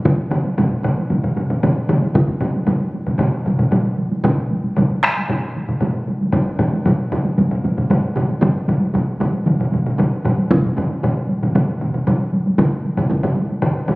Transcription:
0.05 taiko, taiko low-mid, taiko mid, taiko high
0.31 taiko low-mid, taiko mid, taiko high
0.45 taiko high
0.58 taiko, taiko low-mid, taiko mid, taiko high
0.84 taiko low-mid, taiko mid, taiko high
0.98 taiko high
1.10 taiko low-mid, taiko mid, taiko high
1.24 taiko low-mid, taiko mid
1.37 taiko low-mid, taiko mid, taiko high
1.50 taiko low-mid, taiko mid
1.63 taiko low-mid, taiko mid, taiko high
1.89 taiko low-mid, taiko mid, taiko high
2.02 taiko high
2.15 taiko, taiko low-mid, taiko mid, taiko high
2.28 taiko low-mid, taiko mid
2.41 taiko low-mid, taiko mid, taiko high
2.54 taiko high
2.67 taiko low-mid, taiko mid, taiko high
2.94 taiko high
3.07 taiko low-mid, taiko mid, taiko high
3.19 taiko low-mid, taiko mid, taiko high
3.46 taiko low-mid, taiko mid, taiko high
3.59 taiko low-mid, taiko mid
3.72 taiko low-mid, taiko mid, taiko high
3.98 taiko high
4.11 taiko high
4.24 taiko, taiko low-mid, taiko mid, taiko high
4.51 taiko high
4.64 taiko high
4.77 taiko, taiko low-mid, taiko mid, taiko high
5.03 taiko rim, taiko high
5.17 taiko high
5.29 taiko low-mid, taiko mid, taiko high
5.56 taiko high
5.69 taiko low-mid, taiko mid
5.81 taiko low-mid, taiko mid, taiko high
6.08 taiko high
6.21 taiko high
6.32 taiko, taiko low-mid, taiko mid, taiko high
6.59 taiko low-mid, taiko mid, taiko high
6.73 taiko high
6.86 taiko low-mid, taiko mid, taiko high
7.12 taiko low-mid, taiko mid, taiko high
7.25 taiko high
7.38 taiko low-mid, taiko mid, taiko high
7.51 taiko low-mid, taiko mid
7.64 taiko low-mid, taiko mid, taiko high
7.77 taiko low-mid, taiko mid
7.90 taiko low-mid, taiko mid, taiko high
8.16 taiko low-mid, taiko mid, taiko high
8.29 taiko high
8.42 taiko, taiko low-mid, taiko mid, taiko high
8.68 taiko low-mid, taiko mid, taiko high
8.81 taiko high
8.94 taiko, taiko low-mid, taiko mid, taiko high
9.20 taiko low-mid, taiko mid, taiko high
9.33 taiko high
9.46 taiko low-mid, taiko mid, taiko high
9.60 taiko low-mid, taiko mid
9.73 taiko low-mid, taiko mid, taiko high
9.86 taiko low-mid, taiko mid
9.99 taiko low-mid, taiko mid, taiko high
10.25 taiko low-mid, taiko mid, taiko high
10.38 taiko high
10.51 taiko, taiko low-mid, taiko mid, taiko high
10.64 taiko low-mid, taiko mid
10.77 taiko low-mid, taiko mid, taiko high
10.91 taiko high
11.03 taiko low-mid, taiko mid, taiko high
11.29 taiko high
11.42 taiko low-mid, taiko mid, taiko high
11.55 taiko low-mid, taiko mid, taiko high
11.81 taiko low-mid, taiko mid
11.94 taiko low-mid, taiko mid
12.07 taiko low-mid, taiko mid, taiko high
12.32 taiko high
12.46 taiko high
12.58 taiko, taiko low-mid, taiko mid, taiko high
12.85 taiko high
12.97 taiko low-mid, taiko mid, taiko high
13.10 taiko, taiko high
13.23 taiko low-mid, taiko mid
13.36 taiko high
13.49 taiko high
13.62 taiko low-mid, taiko mid
13.88 taiko low-mid, taiko mid

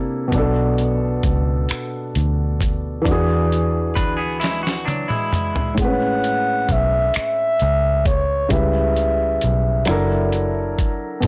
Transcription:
Already playing: C3 A#3 D4 E4 A4
0.28 B2 B3
0.32 B1 D4, kick, closed hi-hat
0.38 A4
0.78 closed hi-hat
1.23 C#2, kick, closed hi-hat
1.69 finger snap, muted fingered electric bass stroke, closed hi-hat
2.15 D2, closed hi-hat
2.61 kick, closed hi-hat
3.02 E3 D4, kick
3.06 E2 F#4, closed hi-hat
3.11 G#4
3.52 closed hi-hat
3.95 D2 D4 B4, kick, closed hi-hat
4.17 B3 G#4
4.40 G#3 E4, closed hi-hat
4.44 snare
4.63 F#4
4.67 snare
4.85 F#3 D4, closed hi-hat, high tom
5.08 G#3 E4, mid tom
5.33 closed hi-hat, mid tom
5.56 floor tom
5.75 A2 G#3, kick, closed hi-hat
5.79 A1 C4 F#5
5.84 C#4 B4
6.24 closed hi-hat
6.69 B1 E5, kick, closed hi-hat
7.14 E5, finger snap, muted fingered electric bass stroke, closed hi-hat
7.60 C#2, closed hi-hat
8.06 C#5, kick, closed hi-hat
8.49 C#2 C#3 G3 E4 E5, kick, closed hi-hat
8.53 B4
8.96 closed hi-hat
9.41 B1, closed hi-hat
9.85 F#1 F#3 D4 E4, finger snap, closed hi-hat
9.90 A4 A#4
10.32 closed hi-hat
10.79 kick, closed hi-hat
11.20 B1 B2 A3, kick, closed hi-hat

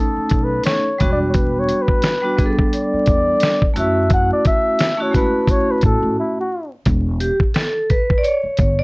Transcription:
Already playing: A3 C#4 D#4 A4
0.16 muted upright bass stroke
0.29 B1, kick, closed hi-hat
0.44 B4
0.63 C#5, snare, closed hi-hat
0.98 E1 G3 B3 D4 F#4, kick, closed hi-hat
1.12 D5
1.28 C#5
1.34 B4, kick, closed hi-hat
1.59 C#5
1.69 closed hi-hat
1.82 B4
1.88 kick
2.02 snare, closed hi-hat
2.22 G3 B3 D4 F#4
2.37 G3 B3 D4 G#4, kick, closed hi-hat
2.46 A4
2.58 kick
2.73 D5, closed hi-hat
2.93 muted upright bass stroke
3.06 E2, kick, closed hi-hat
3.40 snare, closed hi-hat
3.62 kick
3.74 F#2 A3 C#4 E4 F#4, closed hi-hat
3.79 E5
4.10 F#5, kick, closed hi-hat
4.33 D5
4.45 E5, kick, closed hi-hat
4.79 snare, closed hi-hat
4.98 A3 C#4 E4 F#4
5.02 C#5
5.11 G#3 C#4 E4 F#4, kick, closed hi-hat
5.16 A3 B4
5.48 C#5, kick, closed hi-hat
5.71 B4
5.81 A2, kick, closed hi-hat
5.86 A4
6.02 A2
6.19 E4
6.40 F#4
6.86 E1, kick, closed hi-hat
7.20 G4, closed hi-hat
7.40 kick
7.54 A4, snare, closed hi-hat
7.90 B4, kick, closed hi-hat
8.10 kick
8.18 D5
8.23 C#5, closed hi-hat
8.43 muted upright bass stroke
8.57 G1, kick, closed hi-hat
8.79 D5

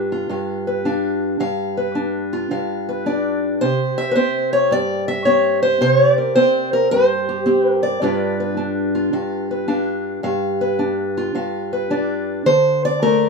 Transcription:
Already playing: G2 D4 F4 B4
0.12 F4
0.29 G2 F5
0.67 B4
0.85 D4 F5
1.40 G2 F5
1.77 B4
1.95 D4
2.33 F4
2.51 G2 F5
2.89 B4
3.06 D4 D5
3.61 C3 C5
3.98 E5
4.11 B4
4.15 C4 C5
4.53 C#5
4.71 G2 D5
5.08 E5
5.25 C4 C#5
5.63 C5
5.81 C3 C5
5.93 C#5
6.13 D5
6.18 A#4
6.35 C4 C5
6.73 A#4
6.91 G2 C5
7.29 G4
7.46 C4 G4
7.71 A#4
7.83 D5
8.02 G2 D4 F4 B4
8.40 B4
8.57 D4
8.95 F4
9.13 G2 F5
9.51 B4
9.68 D4 F5
10.23 G2 F5
10.61 B4
10.79 D4
11.17 F4
11.35 G2 F5
11.73 B4
11.90 D4 D5
12.46 D3 C5
12.85 D5
13.02 A3 A#4

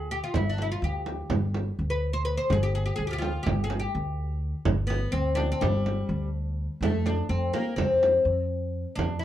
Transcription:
Already playing: D2 G#4
0.11 G4
0.24 F4
0.34 G1 E4, frame drum
0.50 D4
0.58 E4, frame drum
0.72 F4
0.82 D2 G4
1.06 frame drum
1.30 G1, frame drum
1.54 frame drum
1.79 D2
1.90 B4
2.13 C5
2.25 B4
2.38 C5
2.50 G1 G#4, frame drum
2.63 G4
2.75 G#4
2.86 G4
2.96 D2 G#4
3.07 F4 G4
3.13 G4
3.18 F4, frame drum
3.43 G1 G4, frame drum
3.64 G#4
3.70 frame drum
3.80 G4
3.95 D2
4.65 G1, frame drum
4.87 B3, frame drum
5.12 D2 C4
5.35 D4, frame drum
5.52 C4
5.61 G1 G3, frame drum
5.86 frame drum
6.09 D2
6.81 F2 A3, frame drum
7.06 D4, frame drum
7.29 F2 C4
7.54 A#3, frame drum
7.76 F2 C4, frame drum
8.03 frame drum
8.25 F2
8.96 F2 D4, frame drum
9.19 E4

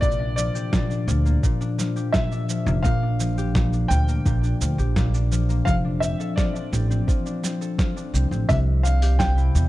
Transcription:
Already playing: G3 A#3 C4 E4 G4
0.01 A#1 A#2 D5, kick, shaker
0.11 shaker
0.20 D4
0.36 F3 D5, shaker
0.55 G4, shaker
0.72 A#2, kick, snare, shaker
0.90 D4, shaker
1.08 D2 F3, shaker
1.25 A#3, shaker
1.43 A#2, kick, shaker
1.61 D4, shaker
1.78 F3, snare, shaker
1.96 G4, shaker
2.13 A#2 E5, kick, snare, shaker
2.32 D4, shaker
2.49 F3, shaker
2.66 F1 A#3, shaker
2.83 A#1 A#2 F5, kick, shaker
3.02 D4
3.20 F3, shaker
3.38 G4, shaker
3.55 A#2, kick, snare, shaker
3.73 D4, shaker
3.88 D2 F3 G5, shaker
4.08 A#3, shaker
4.26 A#1 A#2, kick, shaker
4.43 D4, shaker
4.61 D2 F3, shaker
4.78 A#1 G4, shaker
4.96 A#2, kick, snare, shaker
5.14 D4, shaker
5.31 F3, shaker
5.49 A#3, shaker
5.65 F1 F3 F5, kick, shaker
5.85 D4
6.00 C4 E5, shaker
6.20 A4, shaker
6.36 F3 D5, kick, snare, shaker
6.55 D4, shaker
6.73 A1 C4, shaker
6.90 C4, shaker
7.08 F3, kick, shaker
7.26 D4, shaker
7.43 C4, snare, shaker
7.61 A4, shaker
7.79 F3, kick, snare, shaker
7.96 D4, shaker
8.14 C2 C4, shaker
8.31 A1 C4, shaker
8.49 C2 C3 E5, kick, open hi-hat, shaker
8.83 G3 F5, shaker
9.02 G4, open hi-hat, shaker
9.19 C3 G5, kick, snare, open hi-hat, shaker
9.37 E4, shaker
9.55 E2 G3, shaker

